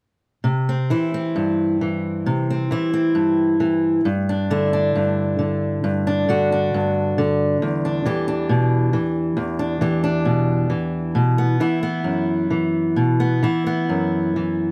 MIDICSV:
0, 0, Header, 1, 2, 480
1, 0, Start_track
1, 0, Tempo, 904977
1, 233, Time_signature, 4, 2, 24, 8
1, 2150, Tempo, 884956
1, 5510, Tempo, 913242
1, 7858, End_track
2, 0, Start_track
2, 0, Title_t, "Steel-string acoustic guitar"
2, 0, Program_c, 0, 25
2, 233, Note_on_c, 0, 48, 59
2, 365, Note_on_c, 0, 60, 49
2, 476, Note_off_c, 0, 48, 0
2, 478, Note_on_c, 0, 52, 50
2, 482, Note_on_c, 0, 64, 49
2, 599, Note_off_c, 0, 60, 0
2, 606, Note_on_c, 0, 60, 51
2, 719, Note_on_c, 0, 43, 54
2, 955, Note_off_c, 0, 52, 0
2, 962, Note_on_c, 0, 52, 52
2, 1200, Note_off_c, 0, 43, 0
2, 1201, Note_on_c, 0, 48, 60
2, 1322, Note_off_c, 0, 60, 0
2, 1328, Note_on_c, 0, 60, 50
2, 1430, Note_off_c, 0, 52, 0
2, 1436, Note_off_c, 0, 64, 0
2, 1436, Note_on_c, 0, 52, 52
2, 1437, Note_off_c, 0, 48, 0
2, 1442, Note_on_c, 0, 64, 51
2, 1550, Note_off_c, 0, 60, 0
2, 1557, Note_on_c, 0, 60, 50
2, 1670, Note_on_c, 0, 43, 58
2, 1904, Note_off_c, 0, 52, 0
2, 1910, Note_on_c, 0, 52, 56
2, 2121, Note_off_c, 0, 43, 0
2, 2121, Note_off_c, 0, 52, 0
2, 2124, Note_off_c, 0, 60, 0
2, 2149, Note_on_c, 0, 43, 64
2, 2155, Note_off_c, 0, 64, 0
2, 2279, Note_on_c, 0, 62, 47
2, 2395, Note_on_c, 0, 50, 53
2, 2397, Note_on_c, 0, 64, 51
2, 2515, Note_off_c, 0, 62, 0
2, 2518, Note_on_c, 0, 62, 51
2, 2632, Note_off_c, 0, 43, 0
2, 2639, Note_on_c, 0, 43, 61
2, 2867, Note_off_c, 0, 50, 0
2, 2873, Note_on_c, 0, 50, 54
2, 3111, Note_off_c, 0, 43, 0
2, 3118, Note_on_c, 0, 43, 63
2, 3237, Note_off_c, 0, 62, 0
2, 3243, Note_on_c, 0, 62, 55
2, 3354, Note_off_c, 0, 50, 0
2, 3360, Note_off_c, 0, 64, 0
2, 3361, Note_on_c, 0, 50, 55
2, 3366, Note_on_c, 0, 66, 52
2, 3483, Note_off_c, 0, 62, 0
2, 3490, Note_on_c, 0, 62, 52
2, 3602, Note_off_c, 0, 43, 0
2, 3609, Note_on_c, 0, 43, 60
2, 3840, Note_off_c, 0, 50, 0
2, 3846, Note_on_c, 0, 50, 63
2, 4055, Note_off_c, 0, 43, 0
2, 4055, Note_off_c, 0, 66, 0
2, 4056, Note_off_c, 0, 62, 0
2, 4085, Note_on_c, 0, 40, 70
2, 4209, Note_on_c, 0, 62, 49
2, 4318, Note_off_c, 0, 50, 0
2, 4321, Note_on_c, 0, 52, 58
2, 4325, Note_on_c, 0, 67, 52
2, 4435, Note_off_c, 0, 62, 0
2, 4441, Note_on_c, 0, 62, 54
2, 4558, Note_on_c, 0, 47, 59
2, 4792, Note_off_c, 0, 47, 0
2, 4794, Note_off_c, 0, 52, 0
2, 4796, Note_on_c, 0, 52, 60
2, 5025, Note_off_c, 0, 40, 0
2, 5032, Note_on_c, 0, 40, 67
2, 5147, Note_off_c, 0, 62, 0
2, 5154, Note_on_c, 0, 62, 55
2, 5270, Note_off_c, 0, 52, 0
2, 5271, Note_off_c, 0, 67, 0
2, 5273, Note_on_c, 0, 52, 57
2, 5277, Note_on_c, 0, 67, 55
2, 5389, Note_off_c, 0, 62, 0
2, 5395, Note_on_c, 0, 62, 53
2, 5512, Note_on_c, 0, 47, 60
2, 5744, Note_off_c, 0, 52, 0
2, 5746, Note_on_c, 0, 52, 57
2, 5750, Note_off_c, 0, 47, 0
2, 5961, Note_off_c, 0, 62, 0
2, 5963, Note_off_c, 0, 67, 0
2, 5983, Note_on_c, 0, 47, 67
2, 5989, Note_off_c, 0, 40, 0
2, 6106, Note_on_c, 0, 59, 52
2, 6219, Note_off_c, 0, 52, 0
2, 6221, Note_on_c, 0, 52, 55
2, 6222, Note_off_c, 0, 47, 0
2, 6224, Note_on_c, 0, 64, 50
2, 6338, Note_off_c, 0, 59, 0
2, 6340, Note_on_c, 0, 59, 51
2, 6452, Note_on_c, 0, 42, 53
2, 6694, Note_off_c, 0, 52, 0
2, 6696, Note_on_c, 0, 52, 50
2, 6935, Note_off_c, 0, 42, 0
2, 6937, Note_on_c, 0, 47, 59
2, 7059, Note_off_c, 0, 59, 0
2, 7061, Note_on_c, 0, 59, 51
2, 7174, Note_off_c, 0, 52, 0
2, 7179, Note_off_c, 0, 64, 0
2, 7180, Note_on_c, 0, 52, 54
2, 7181, Note_off_c, 0, 47, 0
2, 7186, Note_on_c, 0, 64, 48
2, 7304, Note_off_c, 0, 59, 0
2, 7306, Note_on_c, 0, 59, 49
2, 7426, Note_on_c, 0, 42, 53
2, 7665, Note_off_c, 0, 52, 0
2, 7672, Note_on_c, 0, 52, 51
2, 7858, Note_off_c, 0, 42, 0
2, 7858, Note_off_c, 0, 52, 0
2, 7858, Note_off_c, 0, 59, 0
2, 7858, Note_off_c, 0, 64, 0
2, 7858, End_track
0, 0, End_of_file